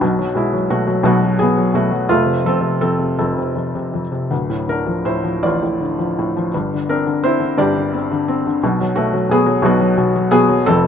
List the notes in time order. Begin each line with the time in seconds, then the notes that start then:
0.01 B1 B2
0.19 F#3
0.35 B2 G#3 E4
0.54 F#3
0.70 B2 A3 F#4
0.87 F#3
1.03 B1 B2 B3 F#4
1.24 F#3
1.39 B2 B3 G#4
1.58 F#3
1.74 B2 A3 F#4
1.91 F#3
2.09 F1 F2 A3 F4
2.26 C3
2.44 F2 C4 A4
2.61 C3
2.81 F2 C4 A4
2.99 C3
3.18 F1 F2 C4 A4
3.38 C3
3.56 F2
3.75 C3
3.94 F2
4.12 C3
4.30 D1 D2
4.50 A2
4.68 D3 D4 A#4
4.87 F3
5.05 A2 E4 C5
5.24 F3
5.43 A1 A2 F4 D5
5.63 A2
5.81 D3
5.99 F3
6.19 A2
6.37 F3
6.54 G1 G2
6.74 D3
6.89 C4 D4 A#4
7.07 D3
7.23 C4 E4 C5
7.40 D3
7.57 G1 G2 G4 D5
7.77 D3
7.94 C4
8.12 D3
8.28 C4
8.47 D3
8.63 B1 B2
8.81 F#3
8.96 B2 A3 F#4
9.13 F#3
9.29 B2 B3 G#4
9.46 F#3
9.62 B1 B2 B3 F#4
9.80 F#3
9.98 B2
10.16 F#3
10.31 B2 B3 G#4
10.49 F#3
10.66 F1 F2 C4 A4